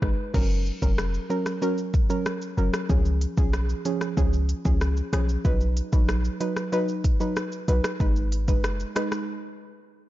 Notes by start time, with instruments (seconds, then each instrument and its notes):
0.02 808-style bass G#1, synth pluck G#3 D#4 B4, kick, cross-stick
0.34 808-style bass F#1, synth pluck F#3 C#4 A#4, kick, crash, shaker
0.50 shaker
0.66 shaker
0.82 808-style bass F1, synth pluck F#3 C#4 A#4, kick, shaker
0.98 cross-stick, shaker
1.14 shaker
1.30 synth pluck F#3 C#4 A#4, shaker
1.46 cross-stick, shaker
1.62 synth pluck F#3 C#4 A#4, shaker
1.78 shaker
1.94 kick, shaker
2.10 synth pluck F#3 C#4 A#4, shaker
2.26 cross-stick, shaker
2.42 shaker
2.57 808-style bass F#1, synth pluck F#3 C#4 A#4, shaker
2.74 cross-stick, shaker
2.89 808-style bass C#2, synth pluck F3 C#4 G#4, kick, shaker
3.05 shaker
3.21 closed hi-hat, shaker
3.37 808-style bass B1, synth pluck F3 C#4 G#4, kick, shaker
3.53 cross-stick, shaker
3.69 shaker
3.85 synth pluck F3 C#4 G#4, closed hi-hat, shaker
4.01 cross-stick, shaker
4.17 808-style bass C#2, synth pluck F3 C#4 G#4, kick, shaker
4.33 shaker
4.49 closed hi-hat, shaker
4.65 808-style bass C#2, synth pluck F3 C#4 G#4, kick, shaker
4.81 cross-stick, shaker
4.97 shaker
5.13 808-style bass B1, synth pluck F3 C#4 G#4, cross-stick, closed hi-hat, shaker
5.29 shaker
5.45 808-style bass B1, synth pluck F#3 D#4 B4, kick, shaker
5.61 shaker
5.77 closed hi-hat, shaker
5.92 808-style bass A#1, synth pluck F#3 D#4 B4, kick, shaker
6.09 cross-stick, shaker
6.25 shaker
6.40 synth pluck F#3 D#4 B4, closed hi-hat, shaker
6.56 cross-stick, shaker
6.72 synth pluck F#3 D#4 B4, shaker
6.88 shaker
7.04 kick, closed hi-hat, shaker
7.20 synth pluck F#3 D#4 B4, shaker
7.36 cross-stick, shaker
7.52 shaker
7.68 808-style bass B1, synth pluck F#3 D#4 B4, closed hi-hat, shaker
7.84 cross-stick, shaker
8.00 808-style bass G#1, synth pluck G#3 D#4 B4, kick, shaker
8.16 shaker
8.32 closed hi-hat, shaker
8.48 808-style bass F#1, synth pluck G#3 D#4 B4, kick, shaker
8.64 cross-stick, shaker
8.80 shaker
8.96 synth pluck G#3 D#4 B4, cross-stick, closed hi-hat, shaker
9.12 cross-stick, shaker